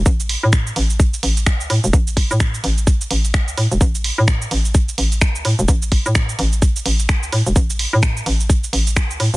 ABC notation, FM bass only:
X:1
M:4/4
L:1/16
Q:"Swing 16ths" 1/4=128
K:Clyd
V:1 name="FM bass" clef=bass
A,,,3 A,,3 A,,,4 A,,,3 D,, A,, E,,, | A,,,3 A,,3 A,,,4 A,,,3 D,, A,, E,,, | A,,,3 A,,3 A,,,4 A,,,3 D,, A,, E,,, | A,,,3 A,,3 A,,,4 A,,,3 D,, A,, E,,, |
A,,,3 A,,3 A,,,4 A,,,3 D,, A,, E,,, |]